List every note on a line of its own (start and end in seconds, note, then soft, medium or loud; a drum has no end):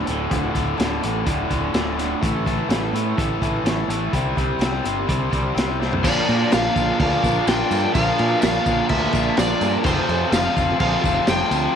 0.00 0.19 D4 soft
0.00 0.18 F4 soft
0.00 0.17 A4 medium
0.05 0.27 D1 medium
0.05 0.28 D2 medium
0.05 0.29 A2 medium
0.05 0.29 D3 medium
0.05 closed hi-hat medium
0.18 0.30 D4 soft
0.18 0.31 F4 soft
0.18 0.30 A4 soft
0.30 0.51 D1 medium
0.30 0.51 D2 medium
0.30 0.53 A2 loud
0.30 0.55 D3 medium
0.30 0.55 D3 loud
0.30 0.54 A3 medium
0.30 0.55 D4 medium
0.30 0.55 F4 medium
0.30 0.56 A4 medium
0.30 kick loud
0.30 closed hi-hat medium
0.53 0.74 D1 medium
0.53 0.76 D2 medium
0.53 0.76 A2 medium
0.53 0.76 D3 medium
0.53 0.67 A3 medium
0.53 0.67 D4 medium
0.53 0.67 F4 medium
0.53 kick medium
0.53 closed hi-hat medium
0.57 0.66 A4 medium
0.67 0.77 D4 soft
0.67 0.78 F4 soft
0.67 0.78 A4 medium
0.77 0.98 D1 medium
0.77 0.99 D2 medium
0.77 1.00 A2 medium
0.77 1.02 D3 medium
0.77 1.01 A3 medium
0.77 1.02 D4 medium
0.77 1.02 F4 medium
0.77 snare medium
0.77 closed hi-hat medium
1.01 1.23 A1 medium
1.01 1.24 D2 medium
1.01 1.24 A2 medium
1.01 1.25 D3 medium
1.01 1.14 A3 medium
1.01 1.14 D4 medium
1.01 1.13 F4 medium
1.01 closed hi-hat medium
1.14 1.38 D4 soft
1.14 1.37 F4 soft
1.14 1.36 A4 soft
1.25 1.46 D1 medium
1.25 1.49 D2 medium
1.25 1.49 A2 medium
1.25 1.50 D3 medium
1.25 kick loud
1.25 closed hi-hat medium
1.37 1.48 D4 soft
1.37 1.49 F4 medium
1.37 1.49 A4 medium
1.49 1.70 D1 medium
1.49 1.71 D2 medium
1.49 1.73 A2 medium
1.49 1.73 D3 medium
1.49 1.62 A3 medium
1.49 1.62 D4 medium
1.49 1.61 F4 medium
1.49 1.60 A4 medium
1.49 kick medium
1.49 closed hi-hat medium
1.61 1.74 D4 soft
1.61 1.74 F4 soft
1.61 1.74 A4 medium
1.73 2.13 D1 medium
1.73 1.95 D2 medium
1.73 1.96 A2 medium
1.73 1.99 D3 medium
1.73 1.86 D3 medium
1.73 1.87 A3 medium
1.73 1.87 D4 medium
1.73 1.87 F4 medium
1.73 1.86 A4 medium
1.73 snare loud
1.73 closed hi-hat medium
1.87 2.12 D4 soft
1.87 2.11 F4 medium
1.87 2.10 A4 medium
1.97 2.20 D2 medium
1.97 2.20 A2 medium
1.97 2.20 D3 medium
1.97 snare soft
1.97 closed hi-hat medium
2.11 2.24 D4 soft
2.11 2.23 F4 soft
2.11 2.23 A4 soft
2.22 2.61 A1 medium
2.22 2.44 A2 loud
2.22 2.47 A2 medium
2.22 2.46 E3 loud
2.22 2.47 E3 medium
2.22 2.45 A3 loud
2.22 2.45 A3 medium
2.22 2.45 C4 medium
2.22 2.46 E4 medium
2.22 2.46 A4 medium
2.22 kick loud
2.22 closed hi-hat medium
2.44 2.67 A2 medium
2.44 2.69 E3 medium
2.44 2.58 A3 medium
2.44 2.69 A3 medium
2.44 2.58 C4 medium
2.44 2.57 E4 medium
2.44 2.56 A4 medium
2.44 kick medium
2.44 closed hi-hat medium
2.57 2.68 A3 soft
2.57 2.68 C4 soft
2.57 2.69 E4 soft
2.57 2.69 A4 medium
2.69 2.89 A1 medium
2.69 2.91 A2 medium
2.69 2.94 A2 medium
2.69 2.94 E3 medium
2.69 2.93 E3 medium
2.69 2.92 A3 medium
2.69 2.93 A3 loud
2.69 2.93 C4 medium
2.69 2.94 E4 medium
2.69 2.94 A4 medium
2.69 snare loud
2.69 closed hi-hat medium
2.93 3.13 A2 medium
2.93 3.16 A2 medium
2.93 3.16 E3 medium
2.93 3.05 A3 medium
2.93 3.16 A3 medium
2.93 3.04 C4 medium
2.93 3.05 E4 medium
2.93 closed hi-hat medium
3.05 3.30 A3 soft
3.05 3.30 C4 soft
3.05 3.30 E4 medium
3.05 3.29 A4 soft
3.17 3.37 A1 medium
3.17 3.40 A2 medium
3.17 3.41 E3 medium
3.17 3.41 A3 medium
3.17 kick loud
3.17 closed hi-hat medium
3.30 3.41 A3 soft
3.30 3.42 C4 soft
3.30 3.43 E4 medium
3.30 3.42 A4 medium
3.42 3.61 A1 medium
3.42 3.64 A2 medium
3.42 3.64 E3 medium
3.42 3.54 A3 medium
3.42 3.64 A3 medium
3.42 3.54 C4 medium
3.42 3.53 A4 medium
3.42 kick medium
3.42 closed hi-hat soft
3.55 3.66 A3 soft
3.55 3.67 C4 soft
3.55 3.67 E4 soft
3.55 3.66 A4 soft
3.64 3.84 A1 medium
3.64 3.87 A2 medium
3.64 3.79 A2 medium
3.64 3.88 E3 medium
3.64 3.88 A3 medium
3.64 3.79 A3 medium
3.64 snare medium
3.64 closed hi-hat medium
3.68 3.79 E3 medium
3.68 3.78 C4 medium
3.68 3.78 E4 medium
3.68 3.77 A4 medium
3.78 4.13 A3 soft
3.78 4.13 C4 soft
3.78 4.13 E4 soft
3.78 4.14 A4 medium
3.88 4.08 A1 medium
3.88 4.12 A2 medium
3.88 4.12 E3 medium
3.88 4.12 A3 medium
3.88 closed hi-hat medium
4.12 4.33 C2 medium
4.12 4.35 C3 medium
4.12 4.38 C3 medium
4.12 4.38 E3 medium
4.12 4.36 G3 medium
4.12 4.34 G3 medium
4.12 4.36 C4 medium
4.12 4.36 E4 medium
4.12 4.37 C5 medium
4.12 kick loud
4.12 closed hi-hat medium
4.35 4.57 C2 medium
4.35 4.60 C3 medium
4.35 4.48 G3 medium
4.35 4.60 G3 medium
4.35 4.48 C4 medium
4.35 4.61 C4 medium
4.35 4.47 E4 medium
4.35 4.47 C5 medium
4.35 kick medium
4.35 closed hi-hat medium
4.48 4.58 G3 soft
4.48 4.58 C4 soft
4.48 4.59 E4 soft
4.48 4.59 C5 medium
4.59 4.79 C2 medium
4.59 4.84 C3 medium
4.59 4.83 C3 medium
4.59 4.84 E3 medium
4.59 4.82 G3 medium
4.59 4.84 G3 medium
4.59 4.83 C4 medium
4.59 4.85 C4 medium
4.59 4.84 E4 medium
4.59 4.84 C5 medium
4.59 snare loud
4.59 closed hi-hat medium
4.84 5.04 G1 medium
4.84 5.06 C3 medium
4.84 4.96 G3 medium
4.84 5.08 G3 medium
4.84 4.97 C4 medium
4.84 5.09 C4 medium
4.84 4.97 E4 medium
4.84 4.95 C5 medium
4.84 closed hi-hat medium
4.96 5.20 G3 soft
4.96 5.20 C4 soft
4.96 5.19 E4 soft
4.96 5.19 C5 medium
5.07 5.29 C2 medium
5.07 5.30 C3 medium
5.07 5.30 G3 medium
5.07 5.30 C4 medium
5.07 kick loud
5.07 closed hi-hat medium
5.20 5.29 G3 soft
5.20 5.30 C4 soft
5.20 5.31 E4 soft
5.20 5.32 C5 medium
5.30 5.52 C2 medium
5.30 5.53 C3 medium
5.30 5.44 G3 medium
5.30 5.57 G3 medium
5.30 5.44 C4 medium
5.30 5.43 E4 medium
5.30 5.43 C5 medium
5.30 kick medium
5.30 closed hi-hat medium
5.35 5.57 C4 medium
5.44 5.56 G3 soft
5.44 5.56 C4 soft
5.44 5.56 E4 soft
5.44 5.56 C5 medium
5.56 6.05 C2 medium
5.56 5.68 C3 medium
5.56 5.79 C3 medium
5.56 5.69 E3 medium
5.56 5.68 G3 medium
5.56 5.80 G3 medium
5.56 5.67 C4 medium
5.56 5.81 C4 medium
5.56 5.67 E4 medium
5.56 5.65 C5 medium
5.56 snare loud
5.56 closed hi-hat medium
5.67 6.04 G3 soft
5.67 6.04 C4 soft
5.67 6.04 E4 medium
5.67 6.03 C5 soft
5.80 6.03 C3 medium
5.80 6.03 G3 medium
5.80 6.03 C4 medium
5.80 snare medium
5.93 floor tom medium
6.03 6.19 A#1 loud
6.03 6.98 A#2 loud
6.03 6.28 A#2 medium
6.03 6.28 F3 medium
6.03 7.00 F3 loud
6.03 6.26 A#3 medium
6.03 7.02 A#3 loud
6.03 6.27 D4 medium
6.03 9.82 D4 medium
6.03 6.28 F4 medium
6.03 9.82 F4 medium
6.03 6.28 A#4 medium
6.03 9.82 A#4 medium
6.03 6.53 D5 medium
6.03 9.82 D5 medium
6.03 kick loud
6.03 crash loud
6.03 tambourine medium
6.03 crash medium
6.27 6.43 A#2 medium
6.27 6.49 A#3 medium
6.27 6.50 D4 medium
6.27 6.51 A#4 medium
6.27 tambourine soft
6.27 crash medium
6.50 6.67 A#1 medium
6.50 6.75 A#2 medium
6.50 6.75 F3 medium
6.50 6.74 A#3 medium
6.50 6.75 D4 medium
6.50 6.75 F4 medium
6.50 6.76 A#4 medium
6.50 6.99 F5 medium
6.50 snare loud
6.50 tambourine loud
6.50 crash medium
6.75 6.91 A#1 medium
6.75 6.87 A#3 medium
6.75 6.88 D4 medium
6.75 6.87 F4 medium
6.75 6.86 A#4 medium
6.75 kick medium
6.75 tambourine medium
6.75 crash medium
6.87 7.21 A#3 soft
6.87 7.22 D4 soft
6.87 7.23 F4 soft
6.87 7.23 A#4 soft
6.99 7.14 D2 medium
6.99 7.92 A#2 medium
6.99 7.95 F3 medium
6.99 7.95 A#3 medium
6.99 7.48 F5 medium
6.99 kick medium
6.99 crash medium
7.22 7.38 A#1 medium
7.22 7.47 A#3 medium
7.22 7.47 D4 medium
7.22 7.47 F4 medium
7.22 7.48 A#4 medium
7.22 kick medium
7.22 snare soft
7.22 tambourine medium
7.22 crash medium
7.47 7.62 A#1 medium
7.47 7.72 A#2 medium
7.47 7.72 F3 medium
7.47 7.70 A#3 medium
7.47 7.70 D4 medium
7.47 7.71 F4 medium
7.47 7.71 A#4 medium
7.47 7.94 G5 medium
7.47 snare loud
7.47 tambourine medium
7.47 crash medium
7.71 7.86 G2 medium
7.71 7.83 A#3 medium
7.71 7.83 D4 medium
7.71 7.82 F4 medium
7.71 7.81 A#4 medium
7.71 tambourine medium
7.71 crash medium
7.83 7.94 A#3 soft
7.83 7.94 D4 soft
7.83 7.94 F4 medium
7.83 7.95 A#4 medium
7.94 8.10 A#1 loud
7.94 8.88 A#2 loud
7.94 8.18 A#2 medium
7.94 8.19 F3 medium
7.94 8.91 F3 loud
7.94 8.16 A#3 medium
7.94 8.17 D4 medium
7.94 8.17 F4 medium
7.94 8.18 A#4 medium
7.94 8.40 F5 medium
7.94 kick loud
7.94 tambourine medium
7.94 crash medium
7.98 8.90 A#3 loud
8.17 8.34 A#2 loud
8.17 8.41 A#3 medium
8.17 8.41 D4 medium
8.17 8.41 F4 medium
8.17 8.41 A#4 medium
8.17 tambourine soft
8.17 crash medium
8.41 8.57 A#1 medium
8.41 8.66 A#2 medium
8.41 8.66 F3 medium
8.41 8.64 A#3 medium
8.41 8.64 D4 medium
8.41 8.65 F4 medium
8.41 8.66 A#4 medium
8.41 8.86 F5 medium
8.41 snare loud
8.41 tambourine loud
8.41 crash medium
8.65 8.81 A#1 medium
8.65 8.77 A#3 medium
8.65 8.76 D4 medium
8.65 8.76 F4 medium
8.65 8.75 A#4 medium
8.65 kick medium
8.65 tambourine medium
8.65 crash medium
8.76 9.10 A#3 soft
8.76 9.11 D4 medium
8.76 9.12 F4 medium
8.76 9.12 A#4 medium
8.89 9.05 D2 medium
8.89 9.83 A#2 medium
8.89 9.86 F3 medium
8.89 9.85 A#3 medium
8.89 9.39 E5 medium
8.89 kick medium
8.89 crash medium
9.11 9.28 A#1 loud
9.11 9.36 A#3 medium
9.11 9.36 D4 medium
9.11 9.36 F4 medium
9.11 9.37 A#4 medium
9.11 kick medium
9.11 snare soft
9.11 tambourine medium
9.11 crash medium
9.16 9.36 A#3 medium
9.37 9.52 A#1 loud
9.37 9.61 A#2 medium
9.37 9.61 F3 medium
9.37 9.60 A#3 medium
9.37 9.61 D4 medium
9.37 9.61 F4 medium
9.37 9.62 A#4 medium
9.37 9.71 D5 medium
9.37 snare loud
9.37 tambourine loud
9.37 crash medium
9.61 9.76 G2 medium
9.61 9.73 A#3 medium
9.61 9.74 D4 medium
9.61 9.74 F4 medium
9.61 9.73 A#4 medium
9.61 tambourine medium
9.61 crash medium
9.74 9.86 A#3 soft
9.74 9.87 D4 medium
9.74 9.86 F4 medium
9.74 9.86 A#4 medium
9.83 10.00 F1 loud
9.83 11.28 F2 loud
9.83 10.56 C3 loud
9.83 10.09 F3 medium
9.83 10.09 A3 medium
9.83 11.76 C4 medium
9.83 10.09 C4 medium
9.83 11.76 F4 medium
9.83 11.76 A4 medium
9.83 10.34 C5 loud
9.83 11.76 A5 medium
9.83 kick loud
9.83 tambourine medium
9.83 crash medium
9.88 10.84 F3 loud
9.88 10.10 F4 medium
9.88 10.10 A4 medium
10.09 10.23 F2 medium
10.09 10.32 A3 medium
10.09 10.33 A4 medium
10.09 tambourine soft
10.09 crash medium
10.32 10.47 F1 medium
10.32 10.56 F3 medium
10.32 10.55 A3 medium
10.32 10.56 C4 medium
10.32 10.57 F4 medium
10.32 10.57 A4 medium
10.32 10.79 F5 medium
10.32 snare loud
10.32 tambourine loud
10.32 crash medium
10.57 10.71 F1 medium
10.57 11.05 F3 medium
10.57 11.04 A3 medium
10.57 10.68 C4 medium
10.57 10.68 F4 medium
10.57 kick medium
10.57 tambourine medium
10.57 crash medium
10.67 11.04 C4 soft
10.67 11.04 F4 soft
10.67 11.03 A4 medium
10.80 10.95 A#1 loud
10.80 11.73 F2 medium
10.80 11.75 C3 medium
10.80 11.76 F3 medium
10.80 11.29 F5 medium
10.80 kick medium
10.80 crash medium
11.04 11.19 F1 medium
11.04 11.27 F3 medium
11.04 11.28 A3 medium
11.04 11.28 C4 medium
11.04 11.28 F4 medium
11.04 kick medium
11.04 tambourine medium
11.04 crash medium
11.27 11.42 F1 medium
11.27 11.74 F2 medium
11.27 11.75 C3 medium
11.27 11.52 F3 medium
11.27 11.51 A3 medium
11.27 11.51 C4 medium
11.27 11.52 F4 medium
11.27 11.53 A4 medium
11.27 11.75 G5 loud
11.27 snare loud
11.27 tambourine loud
11.27 crash medium
11.51 11.66 D2 medium
11.51 11.64 C4 medium
11.51 tambourine medium
11.51 crash medium
11.65 11.76 C4 soft
11.65 11.76 F4 soft
11.65 11.76 A4 medium